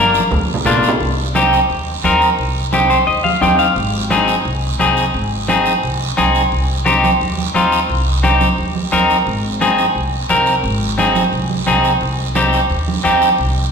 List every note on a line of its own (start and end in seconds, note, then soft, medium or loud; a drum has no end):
0.00 0.18 G1 loud
0.00 0.21 A#3 medium
0.00 0.21 D4 medium
0.00 0.21 A#4 medium
0.14 short guiro medium
0.20 high conga medium
0.31 0.59 D2 loud
0.31 low conga medium
0.31 long guiro medium
0.54 low conga medium
0.66 0.93 A#1 medium
0.66 0.90 A#3 medium
0.66 0.90 D4 medium
0.66 0.90 F4 medium
0.66 low conga loud
0.66 short guiro medium
0.77 low conga loud
0.83 short guiro medium
0.89 low conga medium
1.00 1.55 C2 medium
1.00 high conga soft
1.00 long guiro medium
1.35 1.59 C4 medium
1.35 1.59 D#4 medium
1.35 1.59 G4 medium
1.35 high conga medium
1.35 short guiro medium
1.53 short guiro medium
1.69 1.96 D#2 medium
1.69 high conga soft
1.69 long guiro medium
2.04 2.31 D#2 medium
2.04 2.28 C4 medium
2.04 2.28 D#4 medium
2.04 2.29 A#4 medium
2.04 high conga medium
2.04 short guiro medium
2.22 short guiro medium
2.38 2.93 C2 medium
2.38 high conga soft
2.38 long guiro medium
2.73 2.97 C4 medium
2.73 2.97 D#4 medium
2.73 2.97 G4 medium
2.73 high conga medium
2.73 short guiro medium
2.90 3.06 C5 medium
2.90 short guiro medium
3.07 3.34 D#2 medium
3.07 3.23 D#5 medium
3.07 high conga soft
3.07 long guiro medium
3.24 3.40 F5 medium
3.24 high conga medium
3.41 3.69 D#2 medium
3.41 3.66 C4 medium
3.41 3.66 D#4 medium
3.41 3.66 G4 medium
3.41 3.58 G5 medium
3.41 high conga medium
3.41 short guiro medium
3.59 3.75 F5 medium
3.59 short guiro medium
3.76 4.31 G#1 medium
3.76 high conga soft
3.76 long guiro medium
4.10 4.34 C4 medium
4.10 4.35 D#4 medium
4.10 4.35 G#4 medium
4.10 high conga medium
4.10 short guiro medium
4.28 short guiro medium
4.45 4.73 C2 medium
4.45 high conga soft
4.45 long guiro medium
4.79 5.07 C2 medium
4.79 5.04 C4 medium
4.79 5.04 D#4 medium
4.79 5.04 G#4 medium
4.79 high conga medium
4.79 short guiro medium
4.97 short guiro medium
5.14 5.69 G#1 loud
5.14 high conga soft
5.14 long guiro medium
5.48 5.73 C4 medium
5.48 5.73 D#4 medium
5.48 5.73 G#4 medium
5.48 high conga medium
5.48 short guiro medium
5.66 short guiro medium
5.83 6.10 C2 medium
5.83 high conga soft
5.83 long guiro medium
6.17 6.45 C2 medium
6.17 6.41 C4 medium
6.17 6.41 D#4 medium
6.17 6.42 G#4 medium
6.17 high conga medium
6.17 short guiro medium
6.35 short guiro medium
6.52 7.07 C2 medium
6.52 high conga soft
6.52 long guiro medium
6.85 7.10 C4 medium
6.85 7.10 D#4 medium
6.85 7.10 G4 medium
6.85 high conga medium
6.85 short guiro medium
7.04 high conga medium
7.04 short guiro medium
7.20 7.48 D#2 medium
7.20 high conga soft
7.20 long guiro medium
7.38 high conga medium
7.54 7.82 D#2 medium
7.54 7.79 C4 medium
7.54 7.79 D#4 medium
7.54 7.79 F4 medium
7.54 high conga medium
7.54 short guiro medium
7.72 short guiro medium
7.89 8.44 C2 medium
7.89 high conga soft
7.89 long guiro medium
8.23 8.47 C4 medium
8.23 8.48 D#4 medium
8.23 8.48 G4 medium
8.23 high conga medium
8.23 short guiro medium
8.41 high conga medium
8.41 short guiro medium
8.58 8.86 D#2 medium
8.58 high conga soft
8.58 long guiro medium
8.76 high conga medium
8.92 9.20 D#2 medium
8.92 9.16 C4 medium
8.92 9.16 D#4 medium
8.92 9.17 A#4 medium
8.92 high conga medium
8.92 short guiro medium
9.10 short guiro medium
9.26 9.82 G#1 medium
9.26 high conga soft
9.26 long guiro medium
9.61 9.85 C4 medium
9.61 9.85 D#4 medium
9.61 9.85 G#4 medium
9.61 high conga medium
9.61 short guiro medium
9.78 short guiro medium
9.95 10.23 C2 medium
9.95 high conga soft
9.95 long guiro medium
10.29 10.57 C2 medium
10.29 10.54 C4 medium
10.29 10.54 D#4 medium
10.29 10.54 A#4 medium
10.29 high conga medium
10.29 short guiro medium
10.46 short guiro medium
10.63 11.19 G#1 medium
10.63 high conga soft
10.63 long guiro medium
10.98 11.22 C4 medium
10.98 11.22 D#4 medium
10.98 11.23 G#4 medium
10.98 high conga medium
10.98 short guiro medium
11.16 high conga medium
11.16 short guiro medium
11.32 11.60 C2 medium
11.32 high conga soft
11.32 long guiro medium
11.50 high conga medium
11.67 11.95 C2 medium
11.67 11.91 C4 medium
11.67 11.91 D#4 medium
11.67 11.92 G#4 medium
11.67 high conga medium
11.67 short guiro medium
11.84 short guiro medium
12.01 12.57 C2 medium
12.01 high conga soft
12.01 long guiro medium
12.35 12.60 C4 medium
12.35 12.60 D#4 medium
12.35 12.60 G4 medium
12.35 high conga medium
12.35 short guiro medium
12.53 short guiro medium
12.70 12.98 D#2 medium
12.70 high conga soft
12.70 long guiro medium
12.88 high conga medium
13.04 13.32 D#2 medium
13.04 13.28 C4 medium
13.04 13.28 D#4 medium
13.04 13.29 G4 medium
13.04 high conga medium
13.04 short guiro medium
13.22 short guiro medium
13.38 13.72 C2 medium
13.38 high conga soft
13.38 long guiro medium